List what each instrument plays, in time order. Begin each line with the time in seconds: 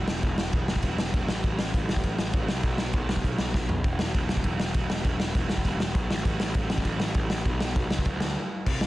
0.08 picked electric bass E1, snare
0.23 picked electric bass E1, kick, crash
0.38 snare
0.53 picked electric bass E1, kick, crash
0.68 picked electric bass E1, snare
0.76 kick
0.83 picked electric bass E1, kick, crash
0.98 picked electric bass E1, snare
1.13 picked electric bass E1, kick, crash
1.28 picked electric bass A1, snare
1.44 picked electric bass A1, kick, crash
1.59 picked electric bass A1, snare
1.74 picked electric bass A1, kick, crash
1.88 picked electric bass A1, snare
1.96 kick
2.04 picked electric bass A1, kick, crash
2.19 picked electric bass A1, snare
2.33 picked electric bass A1, kick, crash
2.49 picked electric bass C2, snare
2.63 picked electric bass B1, kick, crash
2.78 snare
2.93 picked electric bass B1, kick, crash
3.09 picked electric bass B1, snare
3.17 kick
3.24 picked electric bass B1, kick, crash
3.38 picked electric bass B1, snare
3.54 picked electric bass B1, kick, snare
3.69 floor tom
3.84 picked electric bass E1, kick, crash
3.99 picked electric bass E1, snare
4.14 picked electric bass E1, kick, crash
4.29 picked electric bass E1, snare
4.37 kick
4.44 picked electric bass E1, kick, crash
4.60 picked electric bass E1, snare
4.74 picked electric bass E1, kick, crash
4.89 picked electric bass E1, snare
5.04 picked electric bass E1, kick, crash
5.20 snare
5.35 picked electric bass E1, kick, crash
5.49 picked electric bass E1, snare
5.57 kick
5.65 picked electric bass E1, kick, crash
5.80 picked electric bass E1, snare
5.95 picked electric bass B1, kick, crash
6.10 picked electric bass A1, snare
6.25 picked electric bass A1, kick, crash
6.40 picked electric bass A1, snare
6.54 picked electric bass A1, kick, crash
6.70 picked electric bass A1, snare
6.78 kick
6.85 picked electric bass A1, kick, crash
7.00 picked electric bass A1, snare
7.14 picked electric bass A1, kick, crash
7.30 picked electric bass A1, snare
7.45 picked electric bass B1, kick, crash
7.60 snare
7.76 picked electric bass B1, kick, crash
7.91 picked electric bass C#2, snare
7.98 kick
8.05 picked electric bass D2, kick, crash
8.20 picked electric bass D2, snare
8.66 picked electric bass C2, kick, crash
8.81 snare